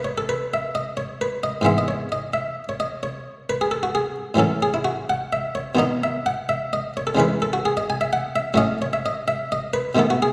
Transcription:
Already playing: E2 E3 G#3 B3
0.05 C#5
0.18 A4
0.29 B4
0.54 E5
0.75 D#5
0.97 C#5
1.21 B4
1.43 D#5
1.61 G#2 E3 G#3 B3
1.66 E5
1.78 D#5
1.88 C#5
2.12 D#5
2.34 E5
2.69 C#5
2.80 D#5
3.03 C#5
3.50 B4
3.61 G#4
3.71 A4
3.83 F#4
3.95 G#4
4.34 A2 E3 F#3 C#4
4.39 A4
4.62 G#4
4.74 E4
4.85 F#4
5.10 F#5
5.33 E5
5.55 C#5
5.75 B2 D#3 B3 D#4
5.79 D#5
6.03 E5
6.26 F#5
6.49 E5
6.73 D#5
6.97 C#5
7.07 A4
7.15 C#3 E3 G#3 C#4
7.20 B4
7.42 A4
7.53 F#4
7.65 G#4
7.77 D#5
7.90 G#5
8.01 E5
8.13 F#5
8.36 E5
8.54 A2 F#3 A3 C#4 D#5
8.82 C#5
8.93 E5
9.06 D#5
9.28 E5
9.52 D#5
9.74 B4
9.95 B2 D#3 A3 B3
9.99 A4
10.10 F#4
10.22 G#4

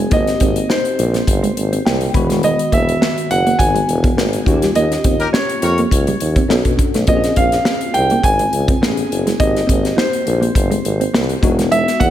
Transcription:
Already playing: B3 C#4 E4 G#4 G#5
0.10 G#1 A#3 C4 D#4 G4 D#5, kick, closed hi-hat
0.27 snare, closed hi-hat
0.40 G#1 C4, kick, closed hi-hat
0.56 muted clean electric guitar stroke, closed hi-hat
0.69 D#4 C5, snare
0.85 closed hi-hat
0.99 A#1, muted clean electric guitar stroke, closed hi-hat
1.14 A#3, snare, closed hi-hat
1.27 G1, kick, closed hi-hat
1.43 G#3, closed hi-hat
1.57 G#1, muted clean electric guitar stroke, closed hi-hat
1.73 C4, closed hi-hat
1.85 C2 A#3 G5, snare
2.01 muted clean electric guitar stroke, closed hi-hat
2.13 E1 D#3 G#3 B3 F#4 B5, kick, closed hi-hat
2.30 G#3, snare, closed hi-hat
2.43 G#3 D#5, closed hi-hat
2.59 closed hi-hat
2.72 E1 A#3 E5, kick, closed hi-hat
2.88 muted clean electric guitar stroke, closed hi-hat
3.01 B3, snare
3.18 closed hi-hat
3.30 F#1 F#5, muted clean electric guitar stroke, closed hi-hat
3.46 A#3, closed hi-hat
3.59 G#1 G#3 B3 D#4 F#4 G#5, kick, closed hi-hat
3.75 G#3, closed hi-hat
3.88 E1, muted clean electric guitar stroke, closed hi-hat
4.04 B3, kick, closed hi-hat
4.17 G#1 A#3, snare
4.33 muted clean electric guitar stroke, closed hi-hat
4.45 D#2 A#3 C#4 F4 F#4, kick, closed hi-hat
4.54 G4
4.62 G3, snare, closed hi-hat
4.75 D#2 A#3 D#5, closed hi-hat
4.92 snare, closed hi-hat
5.04 D#2 C4, kick, closed hi-hat
5.19 D#4 G4 A#4, muted clean electric guitar stroke, closed hi-hat
5.33 C#4 C#5, snare
5.50 closed hi-hat
5.62 F2 G4 A#4 C#5, muted clean electric guitar stroke, closed hi-hat
5.78 A#3, closed hi-hat
5.91 C#2, kick, closed hi-hat
6.07 G3, closed hi-hat
6.20 D#2, muted clean electric guitar stroke, closed hi-hat
6.36 C4, kick, closed hi-hat
6.48 B1 B3 C#4 D4 F#4 A4, snare
6.65 B2, muted clean electric guitar stroke, kick, closed hi-hat
6.79 kick, closed hi-hat
6.94 B1 A3, snare, closed hi-hat
7.07 A#1 A#3 C4 C#4 F4 G4 D#5, kick, closed hi-hat
7.16 G#4
7.23 snare, closed hi-hat
7.36 A#1 C4 F5, kick, closed hi-hat
7.52 muted clean electric guitar stroke, snare, closed hi-hat
7.65 C#4, snare
7.81 closed hi-hat
7.94 C2 G5, muted clean electric guitar stroke, closed hi-hat
8.10 A#3, closed hi-hat
8.23 G#1 G#5, kick, closed hi-hat
8.39 G#3, closed hi-hat
8.53 C#2, muted clean electric guitar stroke, closed hi-hat
8.68 C4, kick, closed hi-hat
8.81 A1 A3 B3 C#4 E4 G#4, snare
8.97 muted clean electric guitar stroke, closed hi-hat
9.11 F#1, closed hi-hat
9.27 G#3, snare, closed hi-hat
9.39 G#1 A#3 C4 D#4 G4 D#5, kick, closed hi-hat
9.56 snare, closed hi-hat
9.67 G#1 C4, kick, closed hi-hat
9.84 muted clean electric guitar stroke, snare, closed hi-hat
9.97 D#4 C5, snare
10.13 closed hi-hat
10.26 A#1, muted clean electric guitar stroke, closed hi-hat
10.41 A#3, closed hi-hat
10.55 G1, kick, closed hi-hat
10.71 G#3, closed hi-hat
10.85 G#1, muted clean electric guitar stroke, closed hi-hat
11.01 C4, closed hi-hat
11.14 C2 A#3, snare
11.29 muted clean electric guitar stroke, closed hi-hat
11.42 E1 G#3 B3 D#4 F#4, kick, closed hi-hat
11.59 G#3, snare, closed hi-hat
11.71 G#3 E5, closed hi-hat
11.88 snare, closed hi-hat
12.00 E2 A#3 F#5, kick, closed hi-hat

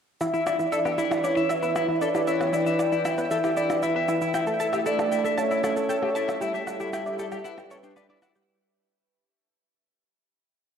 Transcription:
0.21 E3 E4 E5, percussion blips, shaker
0.34 E4, shaker
0.47 E4 D5, percussion blips, shaker
0.59 E4, shaker
0.72 A4 B4 D5 E5, shaker
0.85 G4 B4, percussion blips, shaker
0.98 E4, shaker
1.11 E4, percussion blips, shaker
1.24 E4 C#5 D5, shaker
1.37 E4 E5, shaker
1.49 E5, percussion blips, shaker
1.63 E4 B4, shaker
1.68 G5
1.76 E4, percussion blips, shaker
1.88 E4
2.01 A4 D5, shaker
2.15 E4 G4, percussion blips, shaker
2.27 E4 C#5 E5, shaker
2.40 B4, percussion blips, shaker
2.53 E4 D5, shaker
2.66 E4 E5, shaker
2.79 D5, percussion blips, shaker
2.92 E4, shaker
3.05 E4 E5, percussion blips, shaker
3.18 B4, shaker
3.31 E4 A4 E5, shaker
3.44 E4 G4, percussion blips, shaker
3.57 E4 D5, shaker
3.70 E4, percussion blips, shaker
3.83 E4 E5, shaker
3.96 B4 E5
4.08 E4, percussion blips, shaker
4.21 E4, shaker
4.34 A3 E4 E5 G5, percussion blips, shaker
4.47 A4, shaker
4.60 A4 A5, shaker
4.73 G4 A4 E5, percussion blips, shaker
4.81 E5
4.86 E4 A4 D5, shaker
4.99 A4, percussion blips, shaker
5.12 E4 G5, shaker
5.25 A4 E5, shaker
5.38 C#5 A5, percussion blips, shaker
5.51 E4 E5, shaker
5.64 E4 A4, percussion blips, shaker
5.77 A4, shaker
5.89 A4 G5, shaker
6.02 G4 A4, percussion blips
6.15 E4 A5, shaker
6.28 E5, percussion blips, shaker
6.41 G3 E4 G4 E5, shaker
6.54 G4 E5, shaker
6.67 F#5, percussion blips, shaker
6.80 E4 G4, shaker
6.93 E4 G5, percussion blips, shaker
7.06 D5, shaker
7.19 G4 A4, shaker
7.32 G4 B4, percussion blips, shaker
7.44 E4 F#5, shaker
7.58 G4, percussion blips, shaker
7.70 A4 C#5, shaker
7.83 D4 G5, shaker
7.96 B4 D5, percussion blips, shaker
8.09 E4 D5
8.22 E4 F#5, percussion blips, shaker
8.35 G4, shaker

